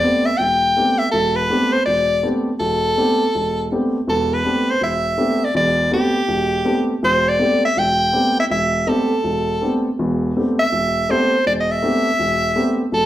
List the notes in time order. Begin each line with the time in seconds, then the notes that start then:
Already playing: D5
0.04 A3 B3 C4 D4 G4
0.25 E5
0.38 E1 G5
0.77 A3 B3 C4 D4 G4
0.98 E5
1.11 E1 A4
1.36 B4
1.50 A3 B3 C4 D4 G4
1.72 C5
1.86 E1 D5
2.23 A3 B3 C4 D4 G4
2.60 E1 A4
2.98 A3 B3 C4 D4 G4
3.35 E1
3.72 A3 B3 C4 D4 G4
4.08 E1 E2 A4
4.34 B4
4.45 A3 B3 C4 D4 G4
4.70 C5
4.81 E1 E5
5.18 A3 B3 C4 D4 G4
5.44 D5
5.55 E1 E2 D5
5.91 A3 B3 C4 D4 G4
6.29 E1
6.65 A3 B3 C4 D4 G4
7.03 E1 C5
7.29 D5
7.39 A3 B3 C4 D4 G4
7.65 E5
7.77 E1 G5
8.13 A3 B3 C4 D4 G4
8.40 E5
8.51 E1 E5
8.87 A3 B3 C4 D4 G4 A4
9.24 E1
9.62 A3 B3 C4 D4 G4
9.99 E1 E2
10.37 A3 B3 C4 D4 G4
10.59 E5
10.72 E1
11.09 A3 B3 C4 D4 G4 C5
11.47 E1 D5
11.60 D#5
11.71 E5
11.82 A3 B3 C4 D4 G4
12.20 E1
12.56 A3 B3 C4 D4 G4
12.92 E1 A4